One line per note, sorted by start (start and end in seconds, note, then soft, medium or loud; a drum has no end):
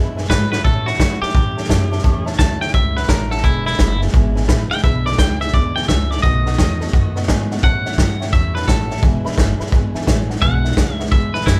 0.00 0.17 E2 medium
0.00 0.29 F#2 medium
0.00 0.17 B2 medium
0.00 0.17 E3 medium
0.00 0.17 G#3 medium
0.00 0.16 D4 medium
0.00 0.15 E4 loud
0.16 0.28 E3 soft
0.16 0.30 G#3 medium
0.16 0.30 D4 medium
0.16 0.29 E4 medium
0.16 0.24 B4 medium
0.16 0.25 E5 medium
0.16 0.25 G#5 loud
0.16 snare soft
0.24 snare soft
0.29 0.64 G#2 loud
0.29 0.52 E3 medium
0.29 0.52 G#3 medium
0.29 0.51 E4 medium
0.29 0.43 B4 loud
0.29 0.51 B4 loud
0.29 0.43 E5 medium
0.29 0.43 B5 loud
0.29 kick medium
0.29 snare loud
0.29 hi-hat pedal medium
0.51 0.64 E3 soft
0.51 0.66 G#3 medium
0.51 0.65 D4 medium
0.51 0.65 E4 medium
0.51 0.59 B4 medium
0.51 0.64 B4 medium
0.51 0.59 E5 medium
0.51 0.60 F#5 medium
0.51 snare medium
0.64 0.87 A2 medium
0.64 0.99 A2 medium
0.64 0.87 E3 medium
0.64 0.87 G3 medium
0.64 0.87 C#4 loud
0.64 0.85 E4 medium
0.64 0.86 A4 loud
0.64 0.77 C#5 loud
0.64 0.78 E5 medium
0.64 0.78 A5 loud
0.64 kick loud
0.64 snare soft
0.86 1.00 G3 medium
0.86 1.00 C#4 soft
0.86 0.99 E4 medium
0.86 1.20 F#4 medium
0.86 0.94 C#5 loud
0.86 0.95 E5 medium
0.86 0.95 B5 loud
0.86 snare soft
0.94 snare soft
0.99 1.20 G2 medium
0.99 1.22 E3 medium
0.99 1.22 G3 medium
0.99 1.22 C#4 medium
0.99 1.20 E4 medium
0.99 1.13 C#5 medium
0.99 1.13 E5 medium
0.99 1.13 B5 medium
0.99 kick medium
0.99 snare loud
0.99 hi-hat pedal loud
1.21 1.35 G3 soft
1.21 1.35 C#4 soft
1.21 1.34 E4 medium
1.21 2.23 G4 loud
1.21 1.29 C#5 medium
1.21 1.30 E5 medium
1.21 1.30 A5 medium
1.21 muted upright bass stroke soft
1.21 snare soft
1.29 snare soft
1.35 1.68 A2 medium
1.35 1.57 A2 medium
1.35 1.57 E3 medium
1.35 1.58 G3 medium
1.35 1.57 C#4 medium
1.35 1.55 E4 medium
1.35 1.48 E5 medium
1.35 1.48 A5 medium
1.35 kick loud
1.35 snare soft
1.56 1.69 G3 soft
1.56 1.70 C#4 soft
1.56 1.69 E4 soft
1.56 1.64 C#5 medium
1.56 1.64 E5 medium
1.56 1.65 A5 medium
1.56 snare soft
1.64 snare soft
1.69 2.03 F#2 loud
1.69 1.92 E3 medium
1.69 1.92 G3 medium
1.69 1.91 C#4 medium
1.69 1.90 E4 medium
1.69 1.82 C#5 loud
1.69 1.83 E5 loud
1.69 1.83 A5 loud
1.69 kick medium
1.69 snare loud
1.69 hi-hat pedal medium
1.91 2.04 G3 medium
1.91 2.05 C#4 medium
1.91 2.04 E4 medium
1.91 1.99 C#5 medium
1.91 1.99 E5 medium
1.91 1.99 A5 loud
1.91 snare soft
1.98 snare soft
2.03 2.38 E2 loud
2.03 2.26 A2 loud
2.03 2.27 E3 loud
2.03 2.27 G3 loud
2.03 2.27 C#4 loud
2.03 2.25 E4 loud
2.03 2.17 C#5 loud
2.03 2.17 E5 loud
2.03 2.17 A5 loud
2.03 kick loud
2.03 snare soft
2.25 2.40 C#4 medium
2.25 2.39 E4 medium
2.25 2.33 C#5 loud
2.25 2.34 E5 loud
2.25 2.34 A5 loud
2.25 snare soft
2.29 2.39 G3 medium
2.29 snare soft
2.38 2.73 D2 medium
2.38 2.61 E3 medium
2.38 2.62 G3 medium
2.38 2.62 C#4 medium
2.38 2.60 E4 medium
2.38 2.52 C#5 medium
2.38 2.52 E5 medium
2.38 2.52 F#5 medium
2.38 2.60 A5 medium
2.38 kick loud
2.38 snare loud
2.38 hi-hat pedal medium
2.60 2.75 C#4 medium
2.60 2.74 E4 medium
2.60 2.68 C#5 medium
2.60 2.69 E5 medium
2.60 2.74 G5 medium
2.60 2.69 A5 medium
2.60 snare soft
2.64 2.74 G3 soft
2.64 snare soft
2.73 3.08 C#2 medium
2.73 2.96 A2 medium
2.73 2.97 E3 medium
2.73 2.97 G3 medium
2.73 2.96 C#4 medium
2.73 2.95 E4 medium
2.73 2.87 C#5 medium
2.73 2.87 E5 medium
2.73 2.96 E5 medium
2.73 2.87 G5 medium
2.73 kick loud
2.73 snare soft
2.96 3.09 G3 medium
2.96 3.10 C#4 soft
2.96 3.09 E4 medium
2.96 3.09 B4 medium
2.96 3.04 C#5 medium
2.96 3.04 E5 medium
2.96 3.04 F#5 medium
2.96 snare soft
3.02 snare soft
3.08 3.43 A1 loud
3.08 3.31 E3 medium
3.08 3.32 G3 medium
3.08 3.31 C#4 medium
3.08 3.30 A#4 loud
3.08 3.22 C#5 loud
3.08 3.22 E5 medium
3.08 3.22 A5 loud
3.08 kick medium
3.08 snare loud
3.08 hi-hat pedal loud
3.12 3.29 E4 medium
3.30 3.45 G3 soft
3.30 3.44 C#4 medium
3.30 3.43 E4 medium
3.30 3.44 A4 medium
3.30 3.38 C#5 medium
3.30 3.38 E5 medium
3.30 3.39 F#5 medium
3.30 snare soft
3.37 snare soft
3.43 3.78 E1 medium
3.43 3.66 E2 medium
3.43 3.66 B2 medium
3.43 3.66 E3 medium
3.43 3.66 G#3 loud
3.43 3.65 D4 loud
3.43 3.65 E4 loud
3.43 3.64 E4 loud
3.43 3.57 B4 loud
3.43 3.57 E5 medium
3.43 3.57 G#5 loud
3.43 kick loud
3.43 snare soft
3.65 3.77 E3 medium
3.65 3.78 G#3 medium
3.65 3.79 D4 medium
3.65 3.78 E4 medium
3.65 4.00 E4 loud
3.65 3.74 B4 loud
3.65 3.74 E5 medium
3.65 3.74 B5 loud
3.65 snare soft
3.72 snare soft
3.78 4.13 F#1 medium
3.78 4.01 E3 medium
3.78 4.01 G#3 medium
3.78 3.92 B4 medium
3.78 3.92 E5 medium
3.78 3.92 B5 loud
3.78 kick medium
3.78 snare loud
3.78 hi-hat pedal medium
4.00 4.13 E3 soft
4.00 4.14 G#3 medium
4.00 4.14 D4 medium
4.00 4.13 E4 medium
4.00 4.08 B4 medium
4.00 4.09 E5 medium
4.00 4.09 G#5 medium
4.00 snare soft
4.07 snare soft
4.13 4.48 G#1 medium
4.13 4.36 E2 medium
4.13 4.36 B2 medium
4.13 4.36 E3 loud
4.13 4.36 G#3 loud
4.13 4.36 D4 medium
4.13 4.34 E4 loud
4.13 4.27 B4 medium
4.13 4.27 E5 medium
4.13 4.27 G#5 loud
4.13 kick loud
4.13 snare soft
4.35 4.47 E3 soft
4.35 4.49 G#3 medium
4.35 4.49 D4 medium
4.35 4.48 E4 medium
4.35 4.43 B4 medium
4.35 4.44 E5 medium
4.35 4.44 G#5 loud
4.35 snare soft
4.43 snare soft
4.48 4.70 A1 loud
4.48 4.71 E3 medium
4.48 4.71 G#3 medium
4.48 4.70 D4 medium
4.48 4.62 B4 loud
4.48 4.62 E5 loud
4.48 4.62 B5 loud
4.48 kick medium
4.48 snare loud
4.48 hi-hat pedal medium
4.52 4.69 E4 medium
4.70 4.84 E3 soft
4.70 4.84 G#3 medium
4.70 4.84 D4 medium
4.70 4.83 E4 medium
4.70 4.78 B4 medium
4.70 4.78 E5 medium
4.70 4.83 G5 medium
4.70 4.79 G#5 medium
4.70 muted upright bass stroke soft
4.70 snare soft
4.77 snare soft
4.84 5.18 B1 medium
4.84 5.06 E2 medium
4.84 5.06 B2 medium
4.84 5.06 E3 medium
4.84 5.07 G#3 medium
4.84 5.05 D4 medium
4.84 5.04 E4 loud
4.84 4.97 B4 medium
4.84 5.05 E5 loud
4.84 4.97 E5 medium
4.84 4.97 B5 loud
4.84 kick loud
4.84 snare soft
5.05 5.17 E3 medium
5.05 5.18 G#3 medium
5.05 5.19 D4 medium
5.05 5.19 E4 medium
5.05 5.13 B4 loud
5.05 5.18 D5 medium
5.05 5.13 E5 medium
5.05 5.14 B5 loud
5.05 snare soft
5.12 snare soft
5.18 5.52 C#2 medium
5.18 5.41 E3 medium
5.18 5.41 G#3 medium
5.18 5.41 D4 medium
5.18 5.39 E4 medium
5.18 5.31 B4 medium
5.18 5.32 E5 medium
5.18 5.40 G5 loud
5.18 5.32 B5 loud
5.18 kick medium
5.18 snare loud
5.18 hi-hat pedal medium
5.40 5.53 E3 soft
5.40 5.53 G#3 soft
5.40 5.54 D4 medium
5.40 5.53 E4 medium
5.40 5.48 B4 medium
5.40 5.48 E5 medium
5.40 5.53 E5 medium
5.40 5.49 G#5 medium
5.40 snare soft
5.47 snare soft
5.53 5.88 D2 medium
5.53 5.75 E2 medium
5.53 5.76 B2 medium
5.53 5.76 E3 medium
5.53 5.76 G#3 medium
5.53 5.75 D4 medium
5.53 5.74 E4 medium
5.53 5.67 B4 medium
5.53 5.75 D5 medium
5.53 5.67 E5 medium
5.53 5.67 B5 medium
5.53 kick loud
5.53 snare soft
5.75 5.86 E3 soft
5.75 5.88 G#3 soft
5.75 5.89 D4 soft
5.75 5.88 E4 medium
5.75 5.83 B4 medium
5.75 5.84 E5 medium
5.75 5.88 G5 loud
5.75 5.84 G#5 medium
5.75 snare soft
5.82 snare soft
5.88 6.22 C#2 loud
5.88 6.10 E3 medium
5.88 6.11 G#3 medium
5.88 6.10 D4 medium
5.88 6.09 E4 medium
5.88 6.02 B4 medium
5.88 6.11 E5 medium
5.88 6.02 E5 medium
5.88 6.02 G#5 loud
5.88 kick medium
5.88 snare loud
5.88 hi-hat pedal medium
6.10 6.24 E3 medium
6.10 6.24 G#3 medium
6.10 6.24 D4 medium
6.10 6.23 E4 soft
6.10 6.18 B4 medium
6.10 6.22 D5 loud
6.10 6.18 E5 medium
6.10 6.19 G#5 medium
6.10 snare soft
6.17 snare soft
6.22 6.57 B1 medium
6.22 6.46 B2 medium
6.22 6.46 D#3 medium
6.22 6.46 A3 medium
6.22 6.46 B3 medium
6.22 6.45 F#4 medium
6.22 6.37 B4 medium
6.22 7.25 D#5 loud
6.22 6.37 D#5 medium
6.22 6.37 F#5 loud
6.22 kick loud
6.22 snare soft
6.46 6.59 A3 soft
6.46 6.59 B3 medium
6.46 6.58 F#4 medium
6.46 6.53 B4 loud
6.46 6.54 D#5 medium
6.46 6.54 F#5 loud
6.46 snare soft
6.52 snare soft
6.58 6.92 E2 medium
6.58 6.81 D#3 medium
6.58 6.81 A3 medium
6.58 6.81 B3 medium
6.58 6.79 F#4 medium
6.58 6.72 B4 medium
6.58 6.72 A5 medium
6.58 kick medium
6.58 snare loud
6.58 hi-hat pedal medium
6.80 6.94 A3 medium
6.80 6.94 B3 medium
6.80 6.93 F#4 medium
6.80 6.88 B4 medium
6.80 6.88 D#5 medium
6.80 6.89 A5 medium
6.80 snare soft
6.87 snare soft
6.93 7.27 F#2 medium
6.93 7.16 B2 medium
6.93 7.16 D#3 medium
6.93 7.16 A3 medium
6.93 7.16 B3 medium
6.93 7.15 F#4 medium
6.93 7.06 B4 medium
6.93 7.07 D#5 medium
6.93 7.07 F#5 loud
6.93 kick loud
6.93 snare soft
7.16 7.28 A3 medium
7.16 7.29 B3 medium
7.16 7.28 F#4 medium
7.16 7.23 B4 medium
7.16 7.23 D#5 medium
7.16 7.24 F#5 loud
7.16 snare soft
7.22 snare soft
7.28 7.62 G#2 medium
7.28 7.50 D#3 medium
7.28 7.51 A3 medium
7.28 7.51 B3 medium
7.28 7.50 F#4 medium
7.28 7.41 B4 loud
7.28 7.42 D#5 loud
7.28 7.42 G#5 loud
7.28 kick medium
7.28 snare loud
7.28 hi-hat pedal medium
7.51 7.64 A3 medium
7.51 7.64 B3 medium
7.51 7.63 F#4 medium
7.51 7.58 B4 medium
7.51 7.58 D#5 medium
7.51 7.59 F#5 loud
7.51 snare soft
7.57 snare soft
7.63 7.97 A2 medium
7.63 7.85 A2 medium
7.63 7.86 E3 medium
7.63 7.86 G3 medium
7.63 7.86 C#4 medium
7.63 7.84 E4 medium
7.63 7.76 C#5 loud
7.63 7.77 E5 medium
7.63 8.31 F#5 loud
7.63 7.77 A5 loud
7.63 kick loud
7.63 snare soft
7.85 7.99 G3 soft
7.85 7.99 C#4 medium
7.85 7.98 E4 medium
7.85 7.93 C#5 loud
7.85 7.93 E5 medium
7.85 7.94 F#5 loud
7.85 snare soft
7.92 snare soft
7.98 8.32 G2 loud
7.98 8.20 E3 medium
7.98 8.21 G3 medium
7.98 8.20 C#4 medium
7.98 8.19 E4 medium
7.98 8.12 C#5 medium
7.98 8.12 E5 medium
7.98 8.12 G5 medium
7.98 kick medium
7.98 snare loud
7.98 hi-hat pedal medium
8.20 8.33 G3 soft
8.20 8.33 C#4 medium
8.20 8.33 E4 medium
8.20 8.28 C#5 medium
8.20 8.28 E5 medium
8.20 8.28 G5 loud
8.20 snare soft
8.27 snare soft
8.33 8.67 E2 medium
8.33 8.55 A2 medium
8.33 8.55 E3 medium
8.33 8.56 G3 medium
8.33 8.55 C#4 medium
8.33 8.53 E4 medium
8.33 8.46 C#5 medium
8.33 8.54 E5 medium
8.33 8.47 A5 medium
8.33 kick loud
8.33 snare soft
8.54 8.67 G3 soft
8.54 8.68 C#4 soft
8.54 8.68 E4 medium
8.54 8.67 B4 medium
8.54 8.63 C#5 medium
8.54 8.63 E5 medium
8.54 8.63 A5 medium
8.54 snare soft
8.62 snare soft
8.67 9.02 A1 medium
8.67 8.89 E3 medium
8.67 8.90 G3 medium
8.67 8.89 C#4 medium
8.67 8.88 E4 medium
8.67 9.02 A4 loud
8.67 8.81 C#5 loud
8.67 8.81 E5 medium
8.67 8.81 F#5 loud
8.67 kick medium
8.67 snare loud
8.67 hi-hat pedal medium
8.89 9.03 G3 medium
8.89 9.03 C#4 medium
8.89 9.02 E4 medium
8.89 8.98 C#5 medium
8.89 8.98 E5 medium
8.89 8.98 F#5 medium
8.89 snare soft
8.97 snare soft
9.02 9.23 E1 medium
9.02 9.25 E2 medium
9.02 9.25 B2 medium
9.02 9.25 E3 medium
9.02 9.25 G#3 medium
9.02 9.24 D4 medium
9.02 9.23 E4 medium
9.02 9.16 B4 loud
9.02 9.16 E5 medium
9.02 9.16 G#5 loud
9.02 kick loud
9.02 snare soft
9.24 9.36 E3 medium
9.24 9.37 G#3 medium
9.24 9.38 D4 medium
9.24 9.37 E4 medium
9.24 9.32 B4 loud
9.24 9.33 E5 loud
9.24 9.33 B5 loud
9.24 muted upright bass stroke soft
9.24 snare soft
9.32 snare soft
9.37 9.58 G1 medium
9.37 9.60 E3 medium
9.37 9.60 G#3 medium
9.37 9.60 D4 medium
9.37 9.58 E4 medium
9.37 9.50 B4 loud
9.37 9.51 E5 medium
9.37 9.51 G#5 loud
9.37 kick loud
9.37 snare loud
9.37 hi-hat pedal medium
9.60 9.72 E3 medium
9.60 9.72 G#3 medium
9.60 9.73 D4 medium
9.60 9.72 E4 medium
9.60 9.67 B4 medium
9.60 9.67 E5 medium
9.60 9.68 B5 medium
9.60 muted upright bass stroke soft
9.60 snare soft
9.66 snare soft
9.72 9.93 G#1 medium
9.72 9.94 E2 medium
9.72 9.95 B2 medium
9.72 9.95 E3 medium
9.72 9.95 G#3 medium
9.72 9.94 D4 medium
9.72 9.93 E4 loud
9.72 9.86 B4 medium
9.72 9.86 E5 medium
9.72 9.86 G#5 medium
9.72 kick loud
9.72 snare soft
9.94 10.06 E3 soft
9.94 10.07 G#3 medium
9.94 10.08 D4 medium
9.94 10.07 E4 medium
9.94 10.02 B4 medium
9.94 10.03 E5 medium
9.94 10.03 G#5 loud
9.94 muted upright bass stroke soft
9.94 snare soft
10.01 snare soft
10.07 10.41 A1 medium
10.07 10.29 E3 medium
10.07 10.30 G#3 medium
10.07 10.30 D4 medium
10.07 10.28 E4 medium
10.07 10.20 B4 loud
10.07 10.21 E5 loud
10.07 10.21 G#5 loud
10.07 kick medium
10.07 snare loud
10.07 hi-hat pedal medium
10.29 10.43 E3 medium
10.29 10.43 G#3 medium
10.29 10.43 D4 medium
10.29 10.42 E4 medium
10.29 10.37 B4 medium
10.29 10.37 E5 medium
10.29 10.37 F#5 loud
10.29 snare soft
10.36 snare soft
10.42 10.76 B1 medium
10.42 10.65 E2 medium
10.42 10.65 B2 loud
10.42 10.65 E3 loud
10.42 10.65 G#3 medium
10.42 10.65 D4 loud
10.42 10.63 E4 medium
10.42 10.55 B4 loud
10.42 10.56 E5 medium
10.42 10.95 F#5 loud
10.42 10.55 G#5 loud
10.42 kick loud
10.42 snare soft
10.64 10.76 E3 medium
10.64 10.77 G#3 soft
10.64 10.78 D4 medium
10.64 10.77 E4 medium
10.64 10.72 B4 medium
10.64 10.72 E5 medium
10.64 10.72 F#5 loud
10.64 snare soft
10.71 snare soft
10.77 11.11 C#2 medium
10.77 10.99 E3 medium
10.77 10.99 G#3 medium
10.77 10.98 D4 medium
10.77 10.97 E4 medium
10.77 10.90 B4 medium
10.77 10.91 E5 medium
10.77 10.91 G#5 medium
10.77 kick medium
10.77 snare loud
10.77 hi-hat pedal medium
10.95 11.12 E4 medium
10.95 11.10 E5 loud
10.99 11.11 E3 soft
10.99 11.12 G#3 medium
10.99 11.12 D4 medium
10.99 11.07 B4 medium
10.99 11.07 E5 medium
10.99 11.07 F#5 loud
10.99 snare soft
11.06 snare soft
11.11 11.46 D2 medium
11.11 11.34 E2 medium
11.11 11.34 B2 medium
11.11 11.34 E3 medium
11.11 11.34 G#3 medium
11.11 11.34 D4 medium
11.11 11.33 E4 medium
11.11 11.25 B4 medium
11.11 11.33 E5 medium
11.11 11.26 G#5 medium
11.11 kick loud
11.11 snare soft
11.34 11.45 E3 soft
11.34 11.46 G#3 soft
11.34 11.47 D4 soft
11.34 11.47 E4 medium
11.34 11.42 B4 medium
11.34 11.46 B4 loud
11.34 11.42 E5 medium
11.34 11.42 G#5 medium
11.34 snare soft
11.41 snare soft
11.46 11.60 F#2 medium
11.46 11.60 E3 medium
11.46 11.60 G#3 medium
11.46 11.60 D4 medium
11.46 11.60 E4 loud
11.46 11.60 E4 medium
11.46 11.60 B4 medium
11.46 11.60 E5 medium
11.46 11.60 G#5 loud
11.46 kick medium
11.46 snare loud
11.46 hi-hat pedal medium